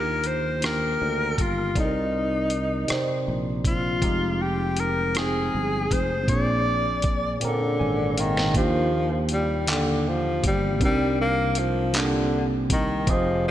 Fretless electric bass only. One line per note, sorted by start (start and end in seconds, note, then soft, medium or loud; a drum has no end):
0.00 0.96 D#2 medium
1.02 1.35 D2 medium
1.39 1.72 G1 medium
1.77 2.85 C2 medium
2.91 muted fretless electric bass stroke soft
3.28 3.99 A#1 medium
4.03 5.49 F1 medium
5.55 5.88 G1 medium
5.92 6.29 F1 medium
6.29 7.38 A#1 medium
7.43 muted fretless electric bass stroke soft
7.81 8.52 G#1 medium
8.55 10.40 D#2 loud
10.44 10.82 G1 medium
10.82 12.66 C2 loud
12.71 13.04 C2 medium
13.08 13.51 F1 loud